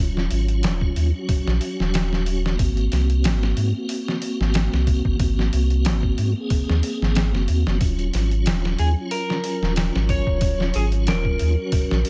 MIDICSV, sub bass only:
0, 0, Header, 1, 2, 480
1, 0, Start_track
1, 0, Tempo, 652174
1, 1908, Time_signature, 4, 2, 24, 8
1, 8903, End_track
2, 0, Start_track
2, 0, Title_t, "Sub bass"
2, 0, Program_c, 0, 38
2, 0, Note_on_c, 0, 27, 94
2, 207, Note_off_c, 0, 27, 0
2, 228, Note_on_c, 0, 32, 104
2, 471, Note_on_c, 0, 27, 87
2, 482, Note_off_c, 0, 32, 0
2, 683, Note_off_c, 0, 27, 0
2, 709, Note_on_c, 0, 39, 92
2, 824, Note_off_c, 0, 39, 0
2, 1079, Note_on_c, 0, 34, 86
2, 1175, Note_off_c, 0, 34, 0
2, 1320, Note_on_c, 0, 27, 93
2, 1888, Note_off_c, 0, 27, 0
2, 1908, Note_on_c, 0, 32, 100
2, 2122, Note_off_c, 0, 32, 0
2, 2149, Note_on_c, 0, 36, 104
2, 2387, Note_on_c, 0, 32, 93
2, 2398, Note_off_c, 0, 36, 0
2, 2601, Note_off_c, 0, 32, 0
2, 2626, Note_on_c, 0, 44, 92
2, 2742, Note_off_c, 0, 44, 0
2, 3238, Note_on_c, 0, 32, 90
2, 3447, Note_off_c, 0, 32, 0
2, 3480, Note_on_c, 0, 36, 94
2, 3688, Note_off_c, 0, 36, 0
2, 3720, Note_on_c, 0, 32, 91
2, 4047, Note_off_c, 0, 32, 0
2, 4071, Note_on_c, 0, 36, 104
2, 4314, Note_on_c, 0, 32, 91
2, 4325, Note_off_c, 0, 36, 0
2, 4525, Note_off_c, 0, 32, 0
2, 4551, Note_on_c, 0, 44, 100
2, 4665, Note_off_c, 0, 44, 0
2, 4925, Note_on_c, 0, 39, 97
2, 5018, Note_off_c, 0, 39, 0
2, 5162, Note_on_c, 0, 32, 98
2, 5399, Note_off_c, 0, 32, 0
2, 5404, Note_on_c, 0, 30, 87
2, 5497, Note_off_c, 0, 30, 0
2, 5512, Note_on_c, 0, 39, 79
2, 5625, Note_off_c, 0, 39, 0
2, 5642, Note_on_c, 0, 30, 79
2, 5736, Note_off_c, 0, 30, 0
2, 5749, Note_on_c, 0, 27, 97
2, 5962, Note_off_c, 0, 27, 0
2, 5991, Note_on_c, 0, 32, 102
2, 6231, Note_on_c, 0, 27, 90
2, 6242, Note_off_c, 0, 32, 0
2, 6443, Note_off_c, 0, 27, 0
2, 6469, Note_on_c, 0, 39, 92
2, 6584, Note_off_c, 0, 39, 0
2, 7078, Note_on_c, 0, 27, 88
2, 7287, Note_off_c, 0, 27, 0
2, 7323, Note_on_c, 0, 32, 104
2, 7529, Note_off_c, 0, 32, 0
2, 7559, Note_on_c, 0, 27, 94
2, 7887, Note_off_c, 0, 27, 0
2, 7911, Note_on_c, 0, 32, 103
2, 8153, Note_on_c, 0, 27, 97
2, 8164, Note_off_c, 0, 32, 0
2, 8364, Note_off_c, 0, 27, 0
2, 8396, Note_on_c, 0, 39, 96
2, 8508, Note_off_c, 0, 39, 0
2, 8767, Note_on_c, 0, 34, 98
2, 8858, Note_off_c, 0, 34, 0
2, 8903, End_track
0, 0, End_of_file